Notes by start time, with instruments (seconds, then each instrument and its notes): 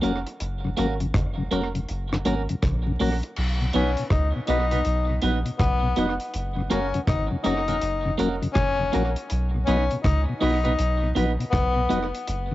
0.02 sub bass F1, tonewheel organ F#3 A#3 C#4, clean electric guitar A#3 C#4 F#4 A#4, closed hi-hat
0.26 muted clean electric guitar stroke, closed hi-hat
0.40 sub bass F#1, closed hi-hat
0.65 tonewheel organ F#2 C#3
0.77 sub bass G#1, tonewheel organ F#3 A#3 C#4, clean electric guitar A#3 C#4 F#4 A#4, closed hi-hat
1.00 tonewheel organ F#2 C#3, closed hi-hat
1.14 sub bass F#1, kick, cross-stick, closed hi-hat
1.38 tonewheel organ F#2 C#3
1.51 sub bass F1, tonewheel organ F#3 A#3 C#4, clean electric guitar A#3 C#4 F#4 A#4, closed hi-hat
1.75 tonewheel organ F#2 C#3, closed hi-hat
1.89 sub bass F#1, closed hi-hat
2.12 tonewheel organ F#2 C#3, cross-stick
2.25 sub bass G#1, tonewheel organ F#3 A#3 C#4, clean electric guitar A#3 C#4 F#4 A#4, closed hi-hat
2.49 tonewheel organ F#2 C#3, closed hi-hat
2.62 sub bass A#1, kick, cross-stick, closed hi-hat
2.86 tonewheel organ F#2 C#3
3.00 sub bass A#1, tonewheel organ F#3 A#3 C#4, clean electric guitar A#3 C#4 F#4 A#4, open hi-hat
3.23 closed hi-hat
3.36 sub bass B1, crash
3.61 tonewheel organ B2
3.73 sub bass B1, tonewheel organ F#3 B3 D#4, clean electric guitar B3 D#4 F#4 B4, tenor saxophone C#4, closed hi-hat
3.97 tonewheel organ B2, closed hi-hat
4.10 sub bass C#2, tenor saxophone D#4, kick, cross-stick, closed hi-hat
4.36 tonewheel organ B2
4.47 sub bass B1, tonewheel organ F#3 B3 D#4, clean electric guitar B3 D#4 F#4 B4, tenor saxophone D#4, closed hi-hat
4.71 tonewheel organ B2, clean electric guitar B3 D#4 F#4 B4, closed hi-hat
4.85 sub bass B1, closed hi-hat
5.10 tonewheel organ B2
5.22 sub bass A#1, tonewheel organ F#3 B3 D#4, clean electric guitar B3 D#4 F#4 B4, closed hi-hat
5.45 tonewheel organ B2, closed hi-hat
5.58 sub bass B1, tenor saxophone B3, kick, cross-stick, closed hi-hat
5.83 tonewheel organ B2
5.96 sub bass F1, tonewheel organ F#3 B3 D#4, clean electric guitar B3 D#4 F#4 B4, closed hi-hat
6.20 closed hi-hat
6.33 sub bass F#1, closed hi-hat
6.56 tonewheel organ F#2 C#3
6.70 sub bass F#1, tonewheel organ F#3 A#3 C#4, clean electric guitar A#3 C#4 F#4 A#4, tenor saxophone C#4, closed hi-hat
6.94 tonewheel organ F#2 C#3, closed hi-hat
7.07 sub bass G#1, tenor saxophone D#4, kick, cross-stick, closed hi-hat
7.31 tonewheel organ F#2 C#3
7.44 sub bass F#1, tonewheel organ F#3 A#3 C#4, clean electric guitar A#3 C#4 F#4 A#4, tenor saxophone D#4, closed hi-hat
7.68 tonewheel organ F#2 C#3, clean electric guitar A#3 C#4 F#4 A#4, closed hi-hat
7.82 sub bass F#1, closed hi-hat
8.05 tonewheel organ F#2 C#3
8.18 sub bass F1, tonewheel organ F#3 A#3 C#4, clean electric guitar A#3 C#4 F#4 A#4, closed hi-hat
8.42 tonewheel organ F#2 C#3, closed hi-hat
8.53 sub bass F#1, tenor saxophone C#4, kick, cross-stick, closed hi-hat
8.79 tonewheel organ F#2 C#3
8.92 sub bass A#1, tonewheel organ F#3 A#3 C#4, clean electric guitar A#3 C#4 F#4 A#4, closed hi-hat
9.16 closed hi-hat
9.30 sub bass B1, closed hi-hat
9.54 tonewheel organ B2
9.65 sub bass B1, tonewheel organ F#3 B3 D#4, clean electric guitar B3 D#4 F#4 B4, tenor saxophone C#4, closed hi-hat
9.91 tonewheel organ B2, closed hi-hat
10.03 sub bass C#2, tenor saxophone D#4, kick, cross-stick, closed hi-hat
10.29 tonewheel organ B2
10.40 sub bass B1, tonewheel organ F#3 B3 D#4, clean electric guitar B3 D#4 F#4 B4, tenor saxophone D#4, open hi-hat
10.64 tonewheel organ B2, clean electric guitar B3 D#4 F#4 B4, closed hi-hat
10.79 sub bass B1, closed hi-hat
11.03 tonewheel organ B2
11.15 sub bass A#1, tonewheel organ F#3 B3 D#4, clean electric guitar B3 D#4 F#4 B4, closed hi-hat
11.39 tonewheel organ B2, closed hi-hat
11.51 sub bass B1, tenor saxophone B3, kick, cross-stick, closed hi-hat
11.76 tonewheel organ B2
11.89 sub bass F1, tonewheel organ F#3 B3 D#4, clean electric guitar B3 D#4 F#4 B4, closed hi-hat
12.15 closed hi-hat
12.27 sub bass F#1, closed hi-hat
12.51 tonewheel organ F#2 C#3